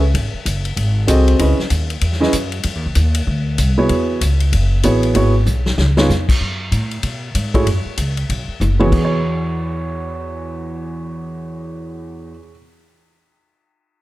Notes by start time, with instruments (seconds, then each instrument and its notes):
Already playing: upright bass C#2
0.14 upright bass G#1, kick, ride
0.33 muted upright bass stroke
0.46 upright bass F#1, kick, hi-hat pedal, ride
0.65 ride
0.76 upright bass G#1, kick, ride
1.08 upright bass C2, grand piano C4 F#4 G#4 A4 D#5, kick, hi-hat pedal, ride
1.28 ride
1.39 upright bass C#2, grand piano C#4 E4 G#4 B4 D#5, kick, ride
1.59 muted upright bass stroke, snare
1.70 upright bass D#2, kick, hi-hat pedal, ride
1.90 ride
2.01 upright bass E2, kick, ride
2.12 snare
2.20 grand piano C#4 E4 G#4 B4 D#5, snare
2.33 upright bass F#2, kick, hi-hat pedal, ride
2.52 ride
2.63 upright bass F2, kick, ride
2.75 upright bass D#2
2.86 upright bass C2
2.95 upright bass D#2, kick, hi-hat pedal, ride
3.15 ride
3.27 upright bass D2, kick
3.58 upright bass C2, kick, hi-hat pedal, ride
3.78 grand piano B3 E4 F#4 G#4 C#5
3.89 upright bass E2, kick, ride
4.21 upright bass C#2, kick, hi-hat pedal, ride
4.40 ride
4.52 upright bass F#1, kick, ride
4.83 upright bass A1, grand piano B3 E4 F#4 G#4 C#5, kick, hi-hat pedal, ride
5.03 ride
5.15 upright bass G#1, grand piano B3 E4 F#4 G#4 C#5, kick, ride
5.46 upright bass B1, hi-hat pedal
5.66 snare
5.78 upright bass C#2, snare
5.97 grand piano B3 D#4 F4 G#4 C#5, snare
6.09 upright bass F2, snare, hi-hat pedal
6.29 kick, crash
6.41 upright bass F#2, kick
6.72 upright bass A2, kick, hi-hat pedal, ride
6.91 ride
7.03 upright bass B2, kick, ride
7.35 upright bass G#2, kick, hi-hat pedal, ride
7.54 grand piano A3 E4 F#4 G#4 C#5, kick, ride
7.66 upright bass F#2, kick, ride
7.85 muted upright bass stroke
7.97 upright bass C#2, kick, hi-hat pedal, ride
8.17 ride
8.29 upright bass B1, kick, ride
8.48 muted upright bass stroke
8.60 upright bass F#1, hi-hat pedal, mid tom
8.79 grand piano E2 B3 E4 F#4 G#4 C#5, mid tom
8.86 grand piano E3
8.92 upright bass E2, grand piano F#4, kick, crash
8.98 grand piano G#4
9.05 grand piano C#5